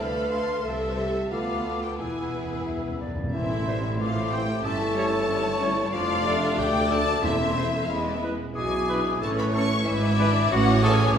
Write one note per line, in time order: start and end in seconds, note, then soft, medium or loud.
0.00 0.63 D2 medium
0.00 0.64 D3 medium
0.00 0.60 A3 medium
0.00 0.63 A3 medium
0.00 0.63 A4 medium
0.00 0.65 A4 medium
0.00 0.64 A4 medium
0.00 0.63 B4 medium
0.00 0.65 F5 medium
0.00 0.32 B5 medium
0.00 0.63 F6 medium
0.32 0.64 C6 medium
0.64 1.27 C2 medium
0.64 1.27 C3 medium
0.64 1.27 A3 medium
0.64 0.97 A4 medium
0.64 1.27 A4 medium
0.64 1.28 C5 medium
0.64 1.31 E5 medium
0.64 1.27 E6 medium
0.97 1.30 G4 medium
1.30 1.97 D2 medium
1.30 1.97 B3 medium
1.30 1.81 F4 medium
1.30 1.97 F4 medium
1.30 1.99 A4 medium
1.30 1.97 A4 medium
1.30 1.98 B4 medium
1.30 1.80 F5 medium
1.30 1.99 D6 medium
1.82 1.99 G5 medium
1.97 3.13 E1 medium
1.97 3.14 E2 medium
1.97 2.05 E2 soft
1.97 2.99 B3 medium
1.97 3.11 B3 medium
1.97 2.98 E4 medium
1.97 3.14 E4 medium
1.97 3.14 G#4 medium
1.97 2.59 B4 medium
1.97 3.12 B4 medium
1.97 2.65 G#5 medium
1.97 2.99 E6 medium
2.06 2.13 E2 soft
2.14 2.21 E2 soft
2.22 2.29 E2 soft
2.30 2.36 E2 soft
2.37 2.44 E2 soft
2.45 2.52 E2 soft
2.53 2.60 E2 soft
2.62 2.68 E2 medium
2.67 2.76 E2 medium
2.67 2.98 E5 medium
2.77 2.83 E2 medium
2.85 2.91 E2 medium
2.92 2.99 E2 medium
3.00 3.07 E2 medium
3.00 3.33 D5 medium
3.08 3.15 E2 medium
3.16 3.22 E2 medium
3.23 3.30 E2 medium
3.33 4.61 A1 medium
3.33 4.61 A2 medium
3.33 3.65 E3 medium
3.33 3.49 E3 medium
3.33 3.49 C4 medium
3.33 3.96 E4 medium
3.33 3.96 E5 medium
3.33 3.96 C6 medium
3.50 3.67 A3 medium
3.50 3.67 E4 medium
3.66 3.83 E3 medium
3.66 4.01 G3 medium
3.66 3.79 A3 medium
3.66 3.83 C4 medium
3.66 3.79 E4 medium
3.66 3.78 C5 medium
3.82 3.99 A3 medium
3.82 3.99 E4 medium
3.98 4.14 E3 medium
3.98 4.67 A3 medium
3.98 4.14 C4 medium
3.98 4.32 F4 medium
3.98 4.61 C5 medium
3.98 4.33 F5 medium
3.98 4.65 D6 medium
4.15 4.32 A3 medium
4.15 4.32 E4 medium
4.31 4.48 E3 medium
4.31 4.44 A3 medium
4.31 4.48 C4 medium
4.31 4.44 E4 medium
4.31 4.67 G4 medium
4.31 4.44 C5 medium
4.31 4.65 G5 loud
4.47 4.64 A3 medium
4.47 4.64 E4 medium
4.63 5.90 G1 medium
4.63 5.91 G2 medium
4.63 5.92 E3 medium
4.63 4.79 G3 medium
4.63 4.79 C#4 medium
4.63 5.77 A4 loud
4.63 4.98 E5 medium
4.63 5.91 A5 loud
4.63 5.27 C#6 medium
4.79 4.96 A3 medium
4.79 4.96 E4 medium
4.95 5.12 G3 medium
4.95 5.08 A3 medium
4.95 5.12 C#4 medium
4.95 5.09 E4 medium
4.95 5.08 C#5 medium
4.95 5.94 C#5 medium
5.11 5.28 A3 medium
5.11 5.28 E4 medium
5.28 5.43 G3 medium
5.28 5.43 C#4 medium
5.28 5.92 C#6 medium
5.43 5.61 A3 medium
5.43 5.60 E4 medium
5.60 5.77 G3 medium
5.60 5.72 A3 medium
5.60 5.77 C#4 medium
5.60 5.72 E4 medium
5.60 5.72 C#5 medium
5.76 5.92 A3 medium
5.76 5.93 E4 medium
5.93 6.54 F1 medium
5.93 6.54 F2 loud
5.93 6.28 F3 loud
5.93 7.20 A3 medium
5.93 7.20 D4 medium
5.93 6.59 F4 loud
5.93 6.57 D5 loud
5.93 6.57 F5 loud
5.93 6.57 D6 loud
6.26 6.37 A3 medium
6.26 7.23 A3 medium
6.26 6.37 D4 medium
6.26 6.37 D5 medium
6.57 7.23 D2 medium
6.57 7.24 D2 medium
6.57 6.90 G4 loud
6.57 7.23 D5 medium
6.57 6.91 G5 loud
6.57 7.22 D6 medium
6.90 7.02 A3 medium
6.90 7.03 D4 medium
6.90 7.24 A4 loud
6.90 7.02 D5 medium
6.90 7.24 A5 loud
7.22 7.88 E1 medium
7.22 7.88 E2 medium
7.22 7.85 E2 loud
7.22 7.88 A3 medium
7.22 7.91 A3 medium
7.22 7.89 C4 medium
7.22 8.22 E4 medium
7.22 8.21 E5 medium
7.22 7.86 E5 loud
7.22 7.89 C6 medium
7.56 7.68 A3 medium
7.56 7.68 E4 medium
7.56 7.68 C5 medium
7.86 8.34 E1 medium
7.86 8.34 E2 medium
7.86 8.34 G#3 medium
7.86 8.34 B3 medium
7.86 7.95 F5 medium
7.86 8.22 B5 medium
7.90 8.23 G#3 medium
7.95 8.04 E5 medium
8.05 8.14 D5 medium
8.14 8.23 E5 medium
8.22 8.34 G#3 medium
8.22 8.34 E4 medium
8.22 8.34 B4 medium
8.55 9.14 B1 medium
8.55 9.14 B2 medium
8.55 11.12 E3 medium
8.55 9.23 G#4 loud
8.55 9.18 G#5 loud
8.55 9.18 D6 medium
8.88 9.19 E3 medium
8.88 9.00 E3 medium
8.88 9.21 D4 medium
8.88 9.00 D4 medium
8.88 9.00 B4 medium
9.20 9.79 A1 medium
9.20 9.79 A2 medium
9.20 9.52 E3 medium
9.20 9.52 C#4 medium
9.20 9.41 A4 loud
9.20 9.82 C#5 medium
9.20 9.29 A5 loud
9.20 9.86 C#6 medium
9.39 9.55 B4 loud
9.39 9.45 B5 loud
9.53 9.85 E3 medium
9.53 9.66 E3 medium
9.53 9.85 C#4 medium
9.53 9.66 C#4 medium
9.53 9.65 A4 medium
9.53 9.86 C#5 loud
9.53 9.85 C#6 loud
9.86 10.44 G#1 loud
9.86 10.44 G#2 loud
9.86 10.50 E4 loud
9.86 10.19 B4 loud
9.86 10.51 E5 loud
9.86 11.13 D6 loud
10.19 10.50 E3 medium
10.19 10.30 E3 medium
10.19 10.50 D4 medium
10.19 10.30 D4 loud
10.19 10.30 B4 medium
10.19 10.51 D5 loud
10.51 11.08 A1 loud
10.51 11.08 A2 loud
10.51 10.82 E3 medium
10.51 10.82 C#4 medium
10.51 10.83 F#4 loud
10.51 11.15 C#5 loud
10.51 10.83 F#5 loud
10.83 10.94 E3 loud
10.83 11.15 E3 loud
10.83 10.94 C#4 loud
10.83 11.15 C#4 medium
10.83 11.16 G#4 loud
10.83 10.94 A4 loud
10.83 11.16 G#5 loud
11.15 11.18 C#4 loud